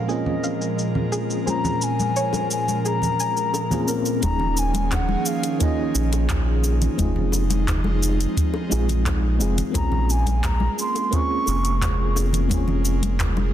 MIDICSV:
0, 0, Header, 1, 7, 480
1, 0, Start_track
1, 0, Key_signature, -5, "minor"
1, 0, Tempo, 689655
1, 1025, Time_signature, 4, 2, 24, 8
1, 9420, End_track
2, 0, Start_track
2, 0, Title_t, "Flute"
2, 0, Program_c, 0, 73
2, 0, Note_on_c, 0, 77, 72
2, 67, Note_on_c, 0, 75, 77
2, 78, Note_off_c, 0, 77, 0
2, 546, Note_off_c, 0, 75, 0
2, 1039, Note_on_c, 0, 82, 104
2, 1276, Note_on_c, 0, 80, 100
2, 1287, Note_off_c, 0, 82, 0
2, 1748, Note_off_c, 0, 80, 0
2, 1752, Note_on_c, 0, 80, 84
2, 1972, Note_off_c, 0, 80, 0
2, 1993, Note_on_c, 0, 82, 97
2, 2681, Note_off_c, 0, 82, 0
2, 2948, Note_on_c, 0, 82, 113
2, 3192, Note_on_c, 0, 80, 102
2, 3203, Note_off_c, 0, 82, 0
2, 3425, Note_on_c, 0, 78, 94
2, 3436, Note_off_c, 0, 80, 0
2, 3661, Note_on_c, 0, 77, 94
2, 3672, Note_off_c, 0, 78, 0
2, 3903, Note_off_c, 0, 77, 0
2, 3907, Note_on_c, 0, 75, 87
2, 4358, Note_off_c, 0, 75, 0
2, 6792, Note_on_c, 0, 82, 95
2, 7039, Note_on_c, 0, 80, 87
2, 7049, Note_off_c, 0, 82, 0
2, 7275, Note_on_c, 0, 82, 97
2, 7286, Note_off_c, 0, 80, 0
2, 7510, Note_off_c, 0, 82, 0
2, 7520, Note_on_c, 0, 84, 99
2, 7759, Note_on_c, 0, 85, 113
2, 7770, Note_off_c, 0, 84, 0
2, 8472, Note_off_c, 0, 85, 0
2, 9420, End_track
3, 0, Start_track
3, 0, Title_t, "Synth arpeggio sound"
3, 0, Program_c, 1, 84
3, 59, Note_on_c, 1, 68, 78
3, 278, Note_off_c, 1, 68, 0
3, 304, Note_on_c, 1, 77, 71
3, 520, Note_off_c, 1, 77, 0
3, 779, Note_on_c, 1, 68, 95
3, 912, Note_off_c, 1, 68, 0
3, 1022, Note_on_c, 1, 68, 84
3, 1252, Note_off_c, 1, 68, 0
3, 1506, Note_on_c, 1, 73, 98
3, 1721, Note_off_c, 1, 73, 0
3, 1985, Note_on_c, 1, 68, 81
3, 2201, Note_off_c, 1, 68, 0
3, 2228, Note_on_c, 1, 80, 71
3, 2454, Note_off_c, 1, 80, 0
3, 2704, Note_on_c, 1, 70, 70
3, 2920, Note_off_c, 1, 70, 0
3, 9420, End_track
4, 0, Start_track
4, 0, Title_t, "FM electric piano"
4, 0, Program_c, 2, 5
4, 0, Control_c, 2, 64, 127
4, 0, Note_on_c, 2, 53, 65
4, 0, Note_on_c, 2, 58, 72
4, 0, Note_on_c, 2, 61, 61
4, 0, Note_on_c, 2, 68, 73
4, 0, Note_on_c, 2, 72, 63
4, 56, Note_off_c, 2, 58, 0
4, 56, Note_on_c, 2, 58, 83
4, 60, Note_on_c, 2, 60, 74
4, 65, Note_off_c, 2, 61, 0
4, 65, Note_on_c, 2, 61, 74
4, 72, Note_on_c, 2, 65, 73
4, 75, Note_off_c, 2, 68, 0
4, 75, Note_on_c, 2, 68, 90
4, 119, Note_off_c, 2, 58, 0
4, 122, Note_off_c, 2, 60, 0
4, 124, Note_off_c, 2, 61, 0
4, 127, Note_off_c, 2, 65, 0
4, 129, Note_off_c, 2, 68, 0
4, 1007, Note_on_c, 2, 58, 68
4, 1016, Note_off_c, 2, 72, 0
4, 1016, Note_on_c, 2, 72, 61
4, 1024, Note_on_c, 2, 61, 61
4, 1034, Note_on_c, 2, 65, 60
4, 1045, Note_on_c, 2, 68, 72
4, 2187, Note_off_c, 2, 58, 0
4, 2191, Note_off_c, 2, 72, 0
4, 2196, Note_off_c, 2, 61, 0
4, 2201, Note_off_c, 2, 65, 0
4, 2206, Note_off_c, 2, 68, 0
4, 2578, Note_on_c, 2, 58, 75
4, 2584, Note_on_c, 2, 60, 69
4, 2589, Note_on_c, 2, 61, 68
4, 2595, Note_on_c, 2, 65, 71
4, 2599, Note_on_c, 2, 68, 87
4, 2672, Note_off_c, 2, 58, 0
4, 2675, Note_off_c, 2, 60, 0
4, 2678, Note_off_c, 2, 61, 0
4, 2681, Note_off_c, 2, 65, 0
4, 2683, Note_off_c, 2, 68, 0
4, 2699, Note_on_c, 2, 58, 80
4, 2704, Note_on_c, 2, 60, 69
4, 2708, Note_on_c, 2, 61, 70
4, 2713, Note_on_c, 2, 65, 70
4, 2719, Note_on_c, 2, 70, 84
4, 2913, Note_off_c, 2, 58, 0
4, 2916, Note_off_c, 2, 60, 0
4, 2918, Note_off_c, 2, 61, 0
4, 2920, Note_off_c, 2, 65, 0
4, 2923, Note_off_c, 2, 70, 0
4, 2929, Note_on_c, 2, 58, 82
4, 2939, Note_on_c, 2, 61, 73
4, 2952, Note_on_c, 2, 63, 71
4, 2955, Control_c, 2, 64, 0
4, 2958, Note_off_c, 2, 53, 0
4, 2960, Note_on_c, 2, 53, 70
4, 2971, Note_on_c, 2, 68, 87
4, 3076, Control_c, 2, 64, 127
4, 3868, Note_off_c, 2, 58, 0
4, 3873, Note_off_c, 2, 61, 0
4, 3880, Note_off_c, 2, 63, 0
4, 3884, Note_off_c, 2, 53, 0
4, 3889, Note_off_c, 2, 68, 0
4, 3895, Note_on_c, 2, 58, 90
4, 3901, Note_on_c, 2, 61, 88
4, 3906, Note_on_c, 2, 63, 88
4, 3909, Note_on_c, 2, 65, 85
4, 3915, Note_on_c, 2, 68, 102
4, 3959, Note_off_c, 2, 58, 0
4, 3962, Note_off_c, 2, 61, 0
4, 3965, Note_off_c, 2, 63, 0
4, 3966, Note_off_c, 2, 65, 0
4, 3969, Note_off_c, 2, 68, 0
4, 4844, Note_on_c, 2, 56, 77
4, 4853, Note_on_c, 2, 60, 71
4, 4862, Note_on_c, 2, 63, 70
4, 4873, Control_c, 2, 64, 0
4, 4874, Note_on_c, 2, 65, 71
4, 4886, Note_on_c, 2, 68, 83
4, 4994, Control_c, 2, 64, 127
4, 6026, Note_off_c, 2, 56, 0
4, 6030, Note_off_c, 2, 60, 0
4, 6035, Note_off_c, 2, 63, 0
4, 6041, Note_off_c, 2, 65, 0
4, 6047, Note_off_c, 2, 68, 0
4, 6052, Note_on_c, 2, 56, 90
4, 6058, Note_on_c, 2, 60, 77
4, 6062, Note_on_c, 2, 63, 75
4, 6067, Note_on_c, 2, 65, 79
4, 6070, Note_on_c, 2, 68, 94
4, 6510, Note_off_c, 2, 56, 0
4, 6513, Note_off_c, 2, 60, 0
4, 6515, Note_off_c, 2, 63, 0
4, 6517, Note_off_c, 2, 65, 0
4, 6519, Note_off_c, 2, 68, 0
4, 6534, Note_on_c, 2, 56, 80
4, 6539, Note_on_c, 2, 60, 76
4, 6544, Note_on_c, 2, 63, 77
4, 6549, Note_on_c, 2, 65, 74
4, 6553, Note_on_c, 2, 68, 92
4, 6751, Note_off_c, 2, 56, 0
4, 6753, Note_off_c, 2, 60, 0
4, 6756, Note_off_c, 2, 63, 0
4, 6758, Note_off_c, 2, 65, 0
4, 6760, Note_off_c, 2, 68, 0
4, 6762, Note_on_c, 2, 58, 77
4, 6773, Note_on_c, 2, 60, 74
4, 6781, Note_on_c, 2, 61, 70
4, 6793, Control_c, 2, 64, 0
4, 6793, Note_on_c, 2, 65, 72
4, 6802, Note_on_c, 2, 68, 89
4, 6928, Control_c, 2, 64, 127
4, 7705, Note_off_c, 2, 58, 0
4, 7710, Note_off_c, 2, 60, 0
4, 7714, Note_off_c, 2, 61, 0
4, 7720, Note_off_c, 2, 65, 0
4, 7725, Note_off_c, 2, 68, 0
4, 7731, Note_on_c, 2, 58, 93
4, 7736, Note_on_c, 2, 60, 85
4, 7742, Note_on_c, 2, 61, 88
4, 7746, Note_on_c, 2, 65, 83
4, 7751, Note_on_c, 2, 68, 102
4, 7797, Note_off_c, 2, 58, 0
4, 7799, Note_off_c, 2, 60, 0
4, 7803, Note_off_c, 2, 61, 0
4, 7804, Note_off_c, 2, 65, 0
4, 7807, Note_off_c, 2, 68, 0
4, 8688, Note_on_c, 2, 58, 72
4, 8698, Note_on_c, 2, 60, 68
4, 8707, Note_on_c, 2, 61, 72
4, 8719, Note_on_c, 2, 65, 69
4, 8729, Note_on_c, 2, 68, 90
4, 9420, Note_off_c, 2, 58, 0
4, 9420, Note_off_c, 2, 60, 0
4, 9420, Note_off_c, 2, 61, 0
4, 9420, Note_off_c, 2, 65, 0
4, 9420, Note_off_c, 2, 68, 0
4, 9420, End_track
5, 0, Start_track
5, 0, Title_t, "Analog synth pad"
5, 0, Program_c, 3, 89
5, 0, Note_on_c, 3, 46, 75
5, 0, Note_on_c, 3, 53, 66
5, 0, Note_on_c, 3, 56, 69
5, 0, Note_on_c, 3, 70, 81
5, 2914, Note_off_c, 3, 56, 0
5, 2916, Note_off_c, 3, 46, 0
5, 2916, Note_off_c, 3, 53, 0
5, 2916, Note_off_c, 3, 70, 0
5, 2947, Note_on_c, 3, 68, 92
5, 2948, Note_on_c, 3, 53, 76
5, 2949, Note_on_c, 3, 61, 76
5, 2950, Note_on_c, 3, 51, 78
5, 2951, Note_on_c, 3, 58, 75
5, 4847, Note_off_c, 3, 53, 0
5, 4847, Note_off_c, 3, 68, 0
5, 4848, Note_off_c, 3, 51, 0
5, 4848, Note_off_c, 3, 61, 0
5, 4849, Note_off_c, 3, 58, 0
5, 4865, Note_on_c, 3, 63, 87
5, 4867, Note_on_c, 3, 56, 74
5, 4869, Note_on_c, 3, 53, 78
5, 6766, Note_off_c, 3, 63, 0
5, 6767, Note_off_c, 3, 53, 0
5, 6785, Note_on_c, 3, 58, 73
5, 9420, Note_off_c, 3, 56, 0
5, 9420, Note_off_c, 3, 58, 0
5, 9420, End_track
6, 0, Start_track
6, 0, Title_t, "Analog synth bass"
6, 0, Program_c, 4, 38
6, 2945, Note_on_c, 4, 27, 101
6, 3593, Note_off_c, 4, 27, 0
6, 4141, Note_on_c, 4, 34, 91
6, 4792, Note_off_c, 4, 34, 0
6, 4864, Note_on_c, 4, 29, 83
6, 5753, Note_off_c, 4, 29, 0
6, 6069, Note_on_c, 4, 34, 95
6, 6545, Note_on_c, 4, 29, 102
6, 6556, Note_off_c, 4, 34, 0
6, 6696, Note_off_c, 4, 29, 0
6, 6787, Note_on_c, 4, 34, 100
6, 7435, Note_off_c, 4, 34, 0
6, 7987, Note_on_c, 4, 29, 92
6, 9420, Note_off_c, 4, 29, 0
6, 9420, End_track
7, 0, Start_track
7, 0, Title_t, "Drums"
7, 65, Note_on_c, 9, 82, 32
7, 134, Note_off_c, 9, 82, 0
7, 183, Note_on_c, 9, 64, 77
7, 253, Note_off_c, 9, 64, 0
7, 305, Note_on_c, 9, 82, 67
7, 307, Note_on_c, 9, 60, 49
7, 375, Note_off_c, 9, 82, 0
7, 376, Note_off_c, 9, 60, 0
7, 429, Note_on_c, 9, 82, 27
7, 499, Note_off_c, 9, 82, 0
7, 549, Note_on_c, 9, 82, 39
7, 619, Note_off_c, 9, 82, 0
7, 663, Note_on_c, 9, 64, 74
7, 732, Note_off_c, 9, 64, 0
7, 779, Note_on_c, 9, 60, 67
7, 784, Note_on_c, 9, 82, 68
7, 849, Note_off_c, 9, 60, 0
7, 854, Note_off_c, 9, 82, 0
7, 907, Note_on_c, 9, 82, 29
7, 976, Note_off_c, 9, 82, 0
7, 1024, Note_on_c, 9, 63, 75
7, 1028, Note_on_c, 9, 82, 39
7, 1093, Note_off_c, 9, 63, 0
7, 1097, Note_off_c, 9, 82, 0
7, 1141, Note_on_c, 9, 60, 47
7, 1145, Note_on_c, 9, 64, 84
7, 1148, Note_on_c, 9, 82, 26
7, 1211, Note_off_c, 9, 60, 0
7, 1215, Note_off_c, 9, 64, 0
7, 1218, Note_off_c, 9, 82, 0
7, 1264, Note_on_c, 9, 82, 67
7, 1334, Note_off_c, 9, 82, 0
7, 1388, Note_on_c, 9, 63, 77
7, 1389, Note_on_c, 9, 82, 28
7, 1458, Note_off_c, 9, 63, 0
7, 1458, Note_off_c, 9, 82, 0
7, 1506, Note_on_c, 9, 82, 38
7, 1576, Note_off_c, 9, 82, 0
7, 1620, Note_on_c, 9, 60, 75
7, 1623, Note_on_c, 9, 63, 65
7, 1628, Note_on_c, 9, 82, 27
7, 1690, Note_off_c, 9, 60, 0
7, 1693, Note_off_c, 9, 63, 0
7, 1698, Note_off_c, 9, 82, 0
7, 1746, Note_on_c, 9, 82, 65
7, 1816, Note_off_c, 9, 82, 0
7, 1864, Note_on_c, 9, 63, 47
7, 1868, Note_on_c, 9, 82, 27
7, 1934, Note_off_c, 9, 63, 0
7, 1937, Note_off_c, 9, 82, 0
7, 1982, Note_on_c, 9, 60, 48
7, 1988, Note_on_c, 9, 82, 33
7, 2052, Note_off_c, 9, 60, 0
7, 2057, Note_off_c, 9, 82, 0
7, 2101, Note_on_c, 9, 64, 71
7, 2110, Note_on_c, 9, 82, 27
7, 2170, Note_off_c, 9, 64, 0
7, 2180, Note_off_c, 9, 82, 0
7, 2226, Note_on_c, 9, 82, 69
7, 2296, Note_off_c, 9, 82, 0
7, 2345, Note_on_c, 9, 82, 28
7, 2415, Note_off_c, 9, 82, 0
7, 2462, Note_on_c, 9, 60, 72
7, 2466, Note_on_c, 9, 82, 36
7, 2531, Note_off_c, 9, 60, 0
7, 2536, Note_off_c, 9, 82, 0
7, 2583, Note_on_c, 9, 64, 84
7, 2586, Note_on_c, 9, 82, 28
7, 2653, Note_off_c, 9, 64, 0
7, 2656, Note_off_c, 9, 82, 0
7, 2701, Note_on_c, 9, 82, 64
7, 2770, Note_off_c, 9, 82, 0
7, 2823, Note_on_c, 9, 82, 30
7, 2824, Note_on_c, 9, 60, 54
7, 2893, Note_off_c, 9, 82, 0
7, 2894, Note_off_c, 9, 60, 0
7, 2942, Note_on_c, 9, 42, 44
7, 2942, Note_on_c, 9, 60, 50
7, 2943, Note_on_c, 9, 82, 43
7, 2944, Note_on_c, 9, 36, 107
7, 2944, Note_on_c, 9, 63, 81
7, 3011, Note_off_c, 9, 60, 0
7, 3012, Note_off_c, 9, 42, 0
7, 3012, Note_off_c, 9, 82, 0
7, 3013, Note_off_c, 9, 63, 0
7, 3014, Note_off_c, 9, 36, 0
7, 3059, Note_on_c, 9, 64, 77
7, 3129, Note_off_c, 9, 64, 0
7, 3181, Note_on_c, 9, 82, 76
7, 3251, Note_off_c, 9, 82, 0
7, 3299, Note_on_c, 9, 63, 101
7, 3304, Note_on_c, 9, 42, 56
7, 3304, Note_on_c, 9, 82, 33
7, 3368, Note_off_c, 9, 63, 0
7, 3373, Note_off_c, 9, 42, 0
7, 3374, Note_off_c, 9, 82, 0
7, 3421, Note_on_c, 9, 39, 111
7, 3421, Note_on_c, 9, 42, 47
7, 3422, Note_on_c, 9, 82, 44
7, 3423, Note_on_c, 9, 36, 104
7, 3426, Note_on_c, 9, 60, 81
7, 3491, Note_off_c, 9, 39, 0
7, 3491, Note_off_c, 9, 42, 0
7, 3492, Note_off_c, 9, 82, 0
7, 3493, Note_off_c, 9, 36, 0
7, 3495, Note_off_c, 9, 60, 0
7, 3540, Note_on_c, 9, 63, 78
7, 3610, Note_off_c, 9, 63, 0
7, 3659, Note_on_c, 9, 82, 76
7, 3728, Note_off_c, 9, 82, 0
7, 3783, Note_on_c, 9, 42, 57
7, 3783, Note_on_c, 9, 60, 44
7, 3783, Note_on_c, 9, 82, 33
7, 3852, Note_off_c, 9, 42, 0
7, 3853, Note_off_c, 9, 60, 0
7, 3853, Note_off_c, 9, 82, 0
7, 3901, Note_on_c, 9, 42, 41
7, 3902, Note_on_c, 9, 82, 44
7, 3904, Note_on_c, 9, 36, 113
7, 3971, Note_off_c, 9, 42, 0
7, 3971, Note_off_c, 9, 82, 0
7, 3974, Note_off_c, 9, 36, 0
7, 4142, Note_on_c, 9, 82, 78
7, 4212, Note_off_c, 9, 82, 0
7, 4264, Note_on_c, 9, 42, 55
7, 4265, Note_on_c, 9, 82, 33
7, 4268, Note_on_c, 9, 60, 73
7, 4334, Note_off_c, 9, 42, 0
7, 4334, Note_off_c, 9, 82, 0
7, 4337, Note_off_c, 9, 60, 0
7, 4381, Note_on_c, 9, 39, 103
7, 4381, Note_on_c, 9, 42, 44
7, 4382, Note_on_c, 9, 82, 42
7, 4384, Note_on_c, 9, 36, 108
7, 4451, Note_off_c, 9, 39, 0
7, 4451, Note_off_c, 9, 42, 0
7, 4452, Note_off_c, 9, 82, 0
7, 4454, Note_off_c, 9, 36, 0
7, 4622, Note_on_c, 9, 82, 80
7, 4623, Note_on_c, 9, 60, 49
7, 4691, Note_off_c, 9, 82, 0
7, 4693, Note_off_c, 9, 60, 0
7, 4744, Note_on_c, 9, 64, 87
7, 4745, Note_on_c, 9, 42, 57
7, 4745, Note_on_c, 9, 82, 32
7, 4813, Note_off_c, 9, 64, 0
7, 4814, Note_off_c, 9, 42, 0
7, 4815, Note_off_c, 9, 82, 0
7, 4858, Note_on_c, 9, 63, 86
7, 4863, Note_on_c, 9, 36, 109
7, 4865, Note_on_c, 9, 42, 44
7, 4865, Note_on_c, 9, 82, 47
7, 4927, Note_off_c, 9, 63, 0
7, 4933, Note_off_c, 9, 36, 0
7, 4934, Note_off_c, 9, 42, 0
7, 4935, Note_off_c, 9, 82, 0
7, 4982, Note_on_c, 9, 64, 76
7, 5052, Note_off_c, 9, 64, 0
7, 5096, Note_on_c, 9, 60, 82
7, 5104, Note_on_c, 9, 82, 81
7, 5166, Note_off_c, 9, 60, 0
7, 5174, Note_off_c, 9, 82, 0
7, 5219, Note_on_c, 9, 63, 103
7, 5224, Note_on_c, 9, 42, 55
7, 5224, Note_on_c, 9, 82, 35
7, 5289, Note_off_c, 9, 63, 0
7, 5293, Note_off_c, 9, 42, 0
7, 5294, Note_off_c, 9, 82, 0
7, 5344, Note_on_c, 9, 36, 106
7, 5346, Note_on_c, 9, 39, 105
7, 5346, Note_on_c, 9, 42, 42
7, 5347, Note_on_c, 9, 82, 45
7, 5413, Note_off_c, 9, 36, 0
7, 5416, Note_off_c, 9, 39, 0
7, 5416, Note_off_c, 9, 42, 0
7, 5416, Note_off_c, 9, 82, 0
7, 5458, Note_on_c, 9, 63, 88
7, 5459, Note_on_c, 9, 60, 53
7, 5527, Note_off_c, 9, 63, 0
7, 5528, Note_off_c, 9, 60, 0
7, 5588, Note_on_c, 9, 82, 82
7, 5658, Note_off_c, 9, 82, 0
7, 5711, Note_on_c, 9, 42, 58
7, 5712, Note_on_c, 9, 82, 37
7, 5781, Note_off_c, 9, 42, 0
7, 5781, Note_off_c, 9, 82, 0
7, 5825, Note_on_c, 9, 36, 122
7, 5829, Note_on_c, 9, 42, 42
7, 5829, Note_on_c, 9, 82, 45
7, 5894, Note_off_c, 9, 36, 0
7, 5898, Note_off_c, 9, 42, 0
7, 5899, Note_off_c, 9, 82, 0
7, 5941, Note_on_c, 9, 60, 73
7, 6011, Note_off_c, 9, 60, 0
7, 6067, Note_on_c, 9, 82, 80
7, 6136, Note_off_c, 9, 82, 0
7, 6183, Note_on_c, 9, 64, 78
7, 6190, Note_on_c, 9, 42, 53
7, 6191, Note_on_c, 9, 82, 33
7, 6253, Note_off_c, 9, 64, 0
7, 6260, Note_off_c, 9, 42, 0
7, 6260, Note_off_c, 9, 82, 0
7, 6304, Note_on_c, 9, 36, 115
7, 6307, Note_on_c, 9, 39, 104
7, 6307, Note_on_c, 9, 42, 42
7, 6307, Note_on_c, 9, 60, 50
7, 6308, Note_on_c, 9, 82, 45
7, 6374, Note_off_c, 9, 36, 0
7, 6377, Note_off_c, 9, 39, 0
7, 6377, Note_off_c, 9, 42, 0
7, 6377, Note_off_c, 9, 60, 0
7, 6377, Note_off_c, 9, 82, 0
7, 6546, Note_on_c, 9, 82, 82
7, 6616, Note_off_c, 9, 82, 0
7, 6666, Note_on_c, 9, 64, 83
7, 6668, Note_on_c, 9, 42, 55
7, 6669, Note_on_c, 9, 82, 35
7, 6736, Note_off_c, 9, 64, 0
7, 6738, Note_off_c, 9, 42, 0
7, 6738, Note_off_c, 9, 82, 0
7, 6781, Note_on_c, 9, 60, 78
7, 6783, Note_on_c, 9, 63, 93
7, 6784, Note_on_c, 9, 36, 109
7, 6786, Note_on_c, 9, 42, 43
7, 6787, Note_on_c, 9, 82, 47
7, 6851, Note_off_c, 9, 60, 0
7, 6853, Note_off_c, 9, 63, 0
7, 6854, Note_off_c, 9, 36, 0
7, 6856, Note_off_c, 9, 42, 0
7, 6857, Note_off_c, 9, 82, 0
7, 6903, Note_on_c, 9, 64, 72
7, 6972, Note_off_c, 9, 64, 0
7, 7028, Note_on_c, 9, 82, 76
7, 7098, Note_off_c, 9, 82, 0
7, 7144, Note_on_c, 9, 60, 51
7, 7144, Note_on_c, 9, 63, 92
7, 7147, Note_on_c, 9, 42, 52
7, 7147, Note_on_c, 9, 82, 35
7, 7213, Note_off_c, 9, 60, 0
7, 7214, Note_off_c, 9, 63, 0
7, 7216, Note_off_c, 9, 42, 0
7, 7217, Note_off_c, 9, 82, 0
7, 7264, Note_on_c, 9, 36, 104
7, 7265, Note_on_c, 9, 39, 105
7, 7265, Note_on_c, 9, 42, 44
7, 7265, Note_on_c, 9, 82, 47
7, 7334, Note_off_c, 9, 36, 0
7, 7334, Note_off_c, 9, 39, 0
7, 7334, Note_off_c, 9, 42, 0
7, 7335, Note_off_c, 9, 82, 0
7, 7378, Note_on_c, 9, 63, 90
7, 7447, Note_off_c, 9, 63, 0
7, 7507, Note_on_c, 9, 82, 75
7, 7577, Note_off_c, 9, 82, 0
7, 7624, Note_on_c, 9, 60, 74
7, 7627, Note_on_c, 9, 42, 53
7, 7628, Note_on_c, 9, 82, 36
7, 7694, Note_off_c, 9, 60, 0
7, 7697, Note_off_c, 9, 42, 0
7, 7697, Note_off_c, 9, 82, 0
7, 7744, Note_on_c, 9, 42, 39
7, 7745, Note_on_c, 9, 36, 116
7, 7745, Note_on_c, 9, 82, 42
7, 7814, Note_off_c, 9, 36, 0
7, 7814, Note_off_c, 9, 42, 0
7, 7814, Note_off_c, 9, 82, 0
7, 7976, Note_on_c, 9, 60, 52
7, 7987, Note_on_c, 9, 82, 85
7, 8046, Note_off_c, 9, 60, 0
7, 8056, Note_off_c, 9, 82, 0
7, 8107, Note_on_c, 9, 42, 54
7, 8107, Note_on_c, 9, 82, 35
7, 8176, Note_off_c, 9, 42, 0
7, 8177, Note_off_c, 9, 82, 0
7, 8225, Note_on_c, 9, 36, 109
7, 8229, Note_on_c, 9, 39, 106
7, 8229, Note_on_c, 9, 42, 43
7, 8230, Note_on_c, 9, 82, 45
7, 8295, Note_off_c, 9, 36, 0
7, 8299, Note_off_c, 9, 39, 0
7, 8299, Note_off_c, 9, 42, 0
7, 8299, Note_off_c, 9, 82, 0
7, 8464, Note_on_c, 9, 60, 78
7, 8468, Note_on_c, 9, 82, 82
7, 8533, Note_off_c, 9, 60, 0
7, 8538, Note_off_c, 9, 82, 0
7, 8580, Note_on_c, 9, 64, 75
7, 8589, Note_on_c, 9, 42, 54
7, 8589, Note_on_c, 9, 82, 35
7, 8650, Note_off_c, 9, 64, 0
7, 8658, Note_off_c, 9, 42, 0
7, 8659, Note_off_c, 9, 82, 0
7, 8696, Note_on_c, 9, 63, 88
7, 8705, Note_on_c, 9, 36, 106
7, 8707, Note_on_c, 9, 42, 39
7, 8708, Note_on_c, 9, 82, 47
7, 8766, Note_off_c, 9, 63, 0
7, 8775, Note_off_c, 9, 36, 0
7, 8777, Note_off_c, 9, 42, 0
7, 8778, Note_off_c, 9, 82, 0
7, 8822, Note_on_c, 9, 64, 77
7, 8829, Note_on_c, 9, 60, 43
7, 8892, Note_off_c, 9, 64, 0
7, 8899, Note_off_c, 9, 60, 0
7, 8944, Note_on_c, 9, 82, 82
7, 9014, Note_off_c, 9, 82, 0
7, 9065, Note_on_c, 9, 63, 108
7, 9068, Note_on_c, 9, 42, 54
7, 9069, Note_on_c, 9, 82, 36
7, 9135, Note_off_c, 9, 63, 0
7, 9138, Note_off_c, 9, 42, 0
7, 9138, Note_off_c, 9, 82, 0
7, 9185, Note_on_c, 9, 36, 104
7, 9187, Note_on_c, 9, 39, 95
7, 9187, Note_on_c, 9, 42, 41
7, 9187, Note_on_c, 9, 82, 43
7, 9254, Note_off_c, 9, 36, 0
7, 9256, Note_off_c, 9, 39, 0
7, 9256, Note_off_c, 9, 42, 0
7, 9257, Note_off_c, 9, 82, 0
7, 9303, Note_on_c, 9, 63, 78
7, 9304, Note_on_c, 9, 60, 77
7, 9372, Note_off_c, 9, 63, 0
7, 9374, Note_off_c, 9, 60, 0
7, 9420, End_track
0, 0, End_of_file